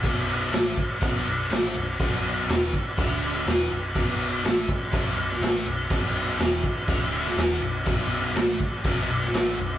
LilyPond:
<<
  \new Staff \with { instrumentName = "Tonewheel organ" } { \time 4/4 \key b \minor \tempo 4 = 123 <d' fis' b' d''>8 <d' fis' b' d''>8 <d' fis' b' d''>8 <d' fis' b' cis''>8 <d' fis' b' e''>8 <d' fis' b' d''>8 <d' fis' b' d''>8 <d' fis' b' d''>8 | <d' fis' b' d''>8 <d' fis' b' d''>8 <d' fis' b' cis''>8 <d' fis' b' d''>8 <d' fis' b' d''>8 <d' fis' b' d''>8 <d' fis' b' d''>8 <d' fis' b' cis''>8 | <d' fis' b' e''>8 <d' fis' b' e''>8 <d' fis' b' d''>8 <d' fis' b' d''>8 <d' fis' b' e''>8 <d' fis' b' d''>8 <d' fis' b' d''>8 <d' fis' b' e''>8 | <d' fis' b' d''>8 <d' fis' b' cis''>8 <d' fis' b' d''>8 <d' fis' b' e''>8 <d' fis' b' cis''>8 <d' fis' b' d''>8 <d' fis' b' e''>8 <d' fis' b' d''>8 |
<d' fis' b' d''>8 <d' fis' b' cis''>8 <d' fis' b' d''>8 <d' fis' b' d''>8 <d' fis' b' d''>8 <d' fis' b' d''>8 <d' fis' b' d''>8 <d' fis' b' e''>8 | }
  \new Staff \with { instrumentName = "Overdriven electric guitar" } { \clef bass \time 4/4 \key b \minor <b,, b,>4 <a, a>8 r8 <b,, b,>8 b,,8 <a, a>8 b,,8 | <b,, b,>4 <e, e>8 r8 <d, d>4 <e, e>8 b,,8 | <b,, b,>4 <a, a>8 r8 <b,, b,>8 b,,8 <a, a>8 b,,8 | <b,, b,>4 <e, e>8 r8 <d, d>4 <e, e>8 b,,8 |
<b,, b,>4 <a, a>8 r8 <b,, b,>8 b,,8 <a, a>8 b,,8 | }
  \new Staff \with { instrumentName = "Picked electric bass" } { \clef bass \time 4/4 \key b \minor b,,,4 a,,8 r8 b,,,8 b,,,8 a,,8 b,,,8 | b,,,4 e,,8 r8 d,,4 e,,8 b,,,8 | b,,,4 a,,8 r8 b,,,8 b,,,8 a,,8 b,,,8 | b,,,4 e,,8 r8 d,,4 e,,8 b,,,8 |
b,,,4 a,,8 r8 b,,,8 b,,,8 a,,8 b,,,8 | }
  \new DrumStaff \with { instrumentName = "Drums" } \drummode { \time 4/4 <cymc bd>8 cymc8 <cymc sn>8 <cymc bd>8 <cymc bd>8 cymc8 <cymc sn>8 cymc8 | <cymc bd>8 cymc8 <cymc sn>8 <cymc bd>8 <cymc bd>8 cymc8 <cymc sn>8 cymc8 | <cymc bd>8 cymc8 <cymc sn>8 <cymc bd>8 <cymc bd>8 cymc16 sn16 <cymc sn>8 cymc8 | <cymc bd>8 cymc8 <cymc sn>8 <cymc bd>8 <cymc bd>8 cymc16 sn16 <cymc sn>8 cymc8 |
<cymc bd>8 cymc8 <cymc sn>8 <cymc bd>8 <cymc bd>8 cymc16 sn16 <cymc sn>8 cymc8 | }
>>